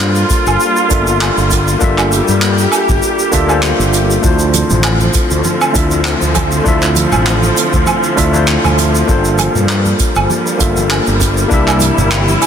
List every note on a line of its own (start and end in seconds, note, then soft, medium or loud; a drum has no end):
0.00 0.22 G2 medium
0.00 4.20 G3 medium
0.00 0.86 A#3 medium
0.00 4.20 A#3 medium
0.00 0.87 D4 medium
0.00 0.87 F4 medium
0.00 1.79 F4 medium
0.00 0.88 A4 medium
0.00 0.89 C5 medium
0.00 clap loud
0.00 shaker medium
0.15 shaker soft
0.30 kick loud
0.30 closed hi-hat medium
0.30 shaker medium
0.46 0.55 G1 medium
0.46 low woodblock medium
0.46 shaker soft
0.60 shaker medium
0.76 shaker soft
0.89 1.29 G1 medium
0.89 1.77 A#3 medium
0.89 1.78 D4 medium
0.89 1.78 F4 medium
0.89 1.79 A4 medium
0.89 kick loud
0.89 closed hi-hat medium
0.89 shaker medium
0.94 1.80 E5 medium
1.07 shaker medium
1.21 clap loud
1.21 low woodblock medium
1.21 shaker medium
1.37 1.74 G1 medium
1.37 shaker soft
1.51 kick medium
1.51 closed hi-hat medium
1.51 shaker medium
1.68 shaker medium
1.79 2.19 G1 medium
1.79 3.28 A#3 medium
1.79 3.29 D4 medium
1.79 3.30 F4 medium
1.79 4.21 G4 medium
1.79 3.30 A4 medium
1.79 kick loud
1.79 shaker medium
1.84 3.31 E5 loud
1.98 clap soft
1.98 low woodblock medium
1.98 shaker soft
2.12 closed hi-hat medium
2.12 shaker medium
2.28 2.65 G2 medium
2.28 shaker medium
2.42 clap loud
2.42 shaker medium
2.58 shaker medium
2.72 closed hi-hat medium
2.72 low woodblock medium
2.72 shaker medium
2.89 2.98 G1 medium
2.89 kick loud
2.89 shaker medium
3.02 shaker medium
3.19 shaker soft
3.32 3.71 D2 medium
3.32 3.45 A#3 medium
3.32 3.45 D4 medium
3.32 3.45 F4 medium
3.32 3.46 A4 medium
3.32 3.46 E5 loud
3.32 kick medium
3.32 closed hi-hat medium
3.32 shaker medium
3.47 4.19 A#3 medium
3.47 4.20 D4 medium
3.47 4.20 F4 medium
3.47 4.21 A4 medium
3.47 low woodblock medium
3.47 shaker soft
3.52 4.22 C5 loud
3.63 clap medium
3.63 shaker medium
3.79 4.16 G1 loud
3.79 shaker medium
3.94 closed hi-hat medium
3.94 shaker medium
4.10 shaker medium
4.21 4.62 D2 medium
4.21 9.05 D3 medium
4.21 11.47 F3 medium
4.21 5.71 A3 medium
4.21 9.05 A3 medium
4.21 9.05 C4 medium
4.21 5.71 D4 medium
4.21 5.72 E4 medium
4.21 5.73 F4 medium
4.21 kick loud
4.21 shaker medium
4.26 5.73 C5 medium
4.39 shaker medium
4.53 closed hi-hat medium
4.53 high conga medium
4.53 shaker medium
4.70 5.07 A1 medium
4.70 low conga medium
4.70 shaker medium
4.84 clap loud
4.84 low woodblock medium
4.84 shaker medium
5.00 high conga medium
5.00 shaker soft
5.14 kick loud
5.14 closed hi-hat medium
5.14 shaker medium
5.31 5.40 D2 loud
5.31 shaker medium
5.44 high conga medium
5.44 shaker soft
5.61 low woodblock medium
5.61 shaker soft
5.72 6.13 D2 medium
5.72 6.61 A3 medium
5.72 6.62 D4 medium
5.72 6.63 E4 medium
5.72 6.63 F4 medium
5.72 kick loud
5.72 closed hi-hat medium
5.72 shaker medium
5.78 6.64 E5 medium
5.91 high conga medium
5.91 shaker medium
6.05 clap medium
6.05 shaker medium
6.22 6.59 D2 medium
6.22 shaker medium
6.35 kick medium
6.35 closed hi-hat loud
6.35 muted conga medium
6.35 high conga medium
6.35 low woodblock medium
6.35 shaker medium
6.51 shaker medium
6.63 7.04 D2 medium
6.63 8.13 A3 medium
6.63 8.14 D4 medium
6.63 8.14 E4 medium
6.63 kick loud
6.63 shaker medium
6.67 8.15 F4 medium
6.67 8.15 E5 loud
6.82 clap soft
6.82 shaker soft
6.96 closed hi-hat loud
6.96 high conga medium
6.96 shaker medium
7.12 7.50 A1 medium
7.12 low conga medium
7.12 low woodblock medium
7.12 shaker medium
7.27 clap loud
7.27 shaker medium
7.42 high conga medium
7.42 shaker soft
7.57 closed hi-hat loud
7.57 shaker medium
7.73 7.83 D2 medium
7.73 kick loud
7.73 shaker soft
7.86 high conga medium
7.86 low woodblock medium
7.86 shaker medium
8.03 shaker soft
8.16 8.56 D2 medium
8.16 8.29 A3 medium
8.16 8.30 D4 medium
8.16 8.30 E4 medium
8.16 8.30 F4 medium
8.16 8.31 E5 loud
8.16 kick medium
8.16 closed hi-hat loud
8.16 muted conga soft
8.16 shaker medium
8.31 9.04 A3 medium
8.31 9.05 D4 medium
8.31 9.05 E4 medium
8.31 9.06 F4 medium
8.31 high conga medium
8.31 shaker soft
8.37 9.07 C5 medium
8.47 clap loud
8.47 shaker medium
8.64 9.01 D2 medium
8.64 low conga medium
8.64 low woodblock medium
8.64 shaker soft
8.78 closed hi-hat medium
8.78 high conga medium
8.78 shaker medium
8.95 shaker medium
9.06 9.47 G1 loud
9.06 12.47 G3 medium
9.06 10.56 A#3 medium
9.06 12.47 A#3 medium
9.06 10.56 D4 medium
9.06 10.57 F4 medium
9.06 10.57 A4 medium
9.06 kick loud
9.06 shaker medium
9.11 10.58 C5 medium
9.25 shaker medium
9.38 closed hi-hat medium
9.38 high conga medium
9.38 low woodblock medium
9.38 shaker medium
9.55 9.92 G2 medium
9.55 low conga medium
9.55 shaker soft
9.69 clap loud
9.69 shaker medium
9.85 high conga medium
9.85 shaker soft
9.99 kick loud
9.99 closed hi-hat loud
9.99 shaker medium
10.15 10.25 G1 medium
10.15 low woodblock medium
10.15 shaker medium
10.30 high conga medium
10.30 shaker medium
10.47 shaker soft
10.58 10.98 G1 medium
10.58 11.46 A#3 medium
10.58 11.47 D4 medium
10.58 11.48 F4 medium
10.58 11.48 A4 medium
10.58 kick loud
10.58 closed hi-hat medium
10.58 shaker medium
10.63 11.49 E5 medium
10.76 high conga medium
10.76 shaker medium
10.91 clap loud
10.91 low woodblock medium
10.91 shaker medium
11.07 11.44 G1 medium
11.07 shaker soft
11.20 kick medium
11.20 closed hi-hat loud
11.20 muted conga medium
11.20 high conga medium
11.20 shaker medium
11.37 shaker medium
11.48 11.89 C2 medium
11.48 12.47 C3 medium
11.48 12.47 A#3 loud
11.48 12.47 D4 medium
11.48 12.47 E4 medium
11.48 kick loud
11.48 shaker medium
11.52 12.47 G4 medium
11.52 12.47 E5 loud
11.68 clap soft
11.68 low woodblock medium
11.68 shaker soft
11.80 closed hi-hat loud
11.80 high conga medium
11.80 shaker medium
11.98 12.34 G1 medium
11.98 muted conga soft
11.98 low conga medium
11.98 shaker soft
12.11 clap loud
12.11 shaker medium
12.28 high conga medium
12.28 shaker soft
12.42 closed hi-hat loud
12.42 low woodblock medium
12.42 shaker medium